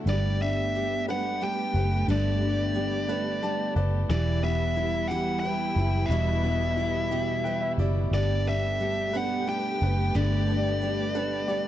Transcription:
0.06 fingered electric bass G1, steel-string acoustic guitar G3 B3 D4 A4, grand piano G3, string section A3 B3 G4, lead electric guitar D5
0.41 steel-string acoustic guitar B3 D4 A4, grand piano D4, lead electric guitar E5
0.75 steel-string acoustic guitar G3 B3 D4 A4, grand piano G4
1.08 steel-string acoustic guitar G3 B3 D4 A4, grand piano B4, lead electric guitar F#5
1.41 steel-string acoustic guitar G3 B3 D4 A4, grand piano G4, lead electric guitar G5
1.74 fingered electric bass F#1, steel-string acoustic guitar B3 D4 A4, grand piano B4
2.08 fingered electric bass G1, grand piano D3, steel-string acoustic guitar G3 B3 D4 A4, lead electric guitar D5
2.41 grand piano D4, steel-string acoustic guitar D4 A4
2.74 steel-string acoustic guitar G3 B3 D4 A4, grand piano G4
3.09 steel-string acoustic guitar G3 B3 D4 A4, grand piano B4
3.42 steel-string acoustic guitar G3 B3 D4 A4, grand piano G4 A5
3.76 fingered electric bass F#1, steel-string acoustic guitar B3 D4 A4, grand piano B4 D5
4.09 fingered electric bass E1, steel-string acoustic guitar E2 B2 E3 G3 E4 G4, grand piano E3, string section G3 B3 E4, lead electric guitar D5
4.42 steel-string acoustic guitar E3 G3 E4 G4, grand piano B3, lead electric guitar E5
4.77 steel-string acoustic guitar E3 G3 E4 G4, grand piano E4
5.08 steel-string acoustic guitar B2 E3 G3 E4 G4, grand piano G4, lead electric guitar F#5
5.12 steel-string acoustic guitar E2
5.40 grand piano B4, lead electric guitar G5
5.45 steel-string acoustic guitar E3 G3 E4 G4
5.76 fingered electric bass F#1, steel-string acoustic guitar E3 G3 E4 G4, grand piano E4
6.06 fingered electric bass E1, lead electric guitar E5
6.10 steel-string acoustic guitar E2 B2 E3 G3 E4 G4, grand piano B2
6.44 steel-string acoustic guitar E3 G3 E4 G4, grand piano B3
6.77 steel-string acoustic guitar E3 G3 E4 G4, grand piano E4
7.11 steel-string acoustic guitar E2 B2 E3 G3 E4 G4, grand piano G4
7.44 steel-string acoustic guitar E3 G3 E4 G4, grand piano B4 G5
7.61 grand piano E5
7.78 fingered electric bass F#1, steel-string acoustic guitar E3 G3 E4 G4, grand piano E4 D5
8.11 fingered electric bass G1, grand piano G3, steel-string acoustic guitar G3 B3 D4 A4, string section A3 B3 G4, lead electric guitar D5
8.46 steel-string acoustic guitar B3 D4 A4, grand piano D4, lead electric guitar E5
8.80 steel-string acoustic guitar G3 B3 D4 A4, grand piano G4
9.13 steel-string acoustic guitar G3 B3 D4 A4, grand piano B4, lead electric guitar F#5
9.47 steel-string acoustic guitar G3 B3 D4 A4, grand piano G4, lead electric guitar G5
9.81 fingered electric bass F#1, steel-string acoustic guitar B3 D4 A4, grand piano B4
10.15 fingered electric bass G1, grand piano D3, steel-string acoustic guitar G3 B3 D4 A4, lead electric guitar D5
10.48 steel-string acoustic guitar B3 D4 A4, grand piano D4
10.82 steel-string acoustic guitar G3 B3 D4 A4, grand piano G4
11.15 steel-string acoustic guitar G3 B3 D4 A4, grand piano B4
11.48 steel-string acoustic guitar G3 B3 D4 A4, grand piano G4 D5

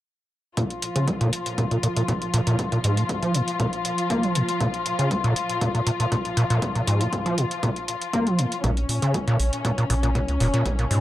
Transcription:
0.57 acid bass A#2, string section F3 F4, kick, closed hi-hat
0.70 closed hi-hat
0.82 closed hi-hat
0.96 acid bass C#3, closed hi-hat
1.08 acid bass A#3, kick, closed hi-hat
1.21 acid bass A#2, closed hi-hat
1.33 closed hi-hat
1.46 closed hi-hat
1.58 acid bass A#2, kick, closed hi-hat
1.71 acid bass A#2, closed hi-hat
1.83 acid bass A#2, closed hi-hat
1.96 acid bass A#2, closed hi-hat
2.08 acid bass A#2, kick, closed hi-hat
2.22 closed hi-hat
2.34 acid bass A#2, closed hi-hat
2.47 acid bass A#2, closed hi-hat
2.59 kick, closed hi-hat
2.72 acid bass A#2, closed hi-hat
2.84 acid bass G#2, closed hi-hat
2.97 acid bass A#2, closed hi-hat
3.09 kick, closed hi-hat
3.23 acid bass F3, closed hi-hat
3.34 acid bass A#2, closed hi-hat
3.48 closed hi-hat
3.60 acid bass A#2, kick, closed hi-hat
3.73 closed hi-hat
3.85 closed hi-hat
3.98 closed hi-hat
4.10 acid bass A#3, kick, closed hi-hat
4.23 acid bass F3, closed hi-hat
4.35 acid bass A#2, closed hi-hat
4.49 closed hi-hat
4.60 acid bass A#2, kick, closed hi-hat
4.74 closed hi-hat
4.86 closed hi-hat
4.99 acid bass C#3, closed hi-hat
5.11 acid bass A#3, kick, closed hi-hat
5.24 acid bass A#2, closed hi-hat
5.36 closed hi-hat
5.49 closed hi-hat
5.61 acid bass A#2, kick, closed hi-hat
5.75 acid bass A#2, closed hi-hat
5.87 acid bass A#2, closed hi-hat
6.00 acid bass A#2, closed hi-hat
6.12 acid bass A#2, kick, closed hi-hat
6.25 closed hi-hat
6.37 acid bass A#2, closed hi-hat
6.50 acid bass A#2, closed hi-hat
6.62 kick, closed hi-hat
6.75 acid bass A#2, closed hi-hat
6.87 acid bass G#2, closed hi-hat
7.01 acid bass A#2, closed hi-hat
7.13 kick, closed hi-hat
7.26 acid bass F3, closed hi-hat
7.38 acid bass A#2, closed hi-hat
7.51 closed hi-hat
7.63 acid bass A#2, kick, closed hi-hat
7.76 closed hi-hat
7.88 closed hi-hat
8.02 closed hi-hat
8.13 acid bass A#3, kick, closed hi-hat
8.27 acid bass F3, closed hi-hat
8.38 acid bass A#2, closed hi-hat
8.52 closed hi-hat
8.64 analog synth bass A#1, acid bass A#2, string section C#4, kick, closed hi-hat
8.77 closed hi-hat
8.89 analog synth bass A#2, open hi-hat
9.02 acid bass C#3, closed hi-hat
9.14 acid bass A#3, kick, closed hi-hat
9.27 acid bass A#2, closed hi-hat
9.39 analog synth bass A#1, open hi-hat
9.53 closed hi-hat
9.65 acid bass A#2, kick, closed hi-hat
9.78 acid bass A#2, closed hi-hat
9.90 analog synth bass A#1, acid bass A#2, open hi-hat
10.03 acid bass A#2, closed hi-hat
10.15 acid bass A#2, kick, closed hi-hat
10.28 analog synth bass C#2, closed hi-hat
10.40 analog synth bass F1, acid bass A#2, open hi-hat
10.54 acid bass A#2, closed hi-hat
10.66 analog synth bass A#1, kick, closed hi-hat
10.79 acid bass A#2, closed hi-hat
10.91 acid bass G#2, analog synth bass A#2, open hi-hat

